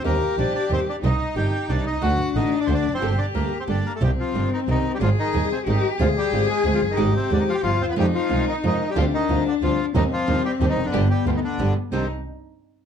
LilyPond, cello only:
\new Staff \with { instrumentName = "Cello" } { \time 3/4 \key g \minor \tempo 4 = 182 g'2. | ees'2. | d'2. | g'2~ g'8 r8 |
\key c \minor c'2. | aes'2 g'4 | aes'2. | g'2 f'4 |
ees'2. | d'2. | c'2. | b2~ b8 r8 |
ees'8 r2 r8 | }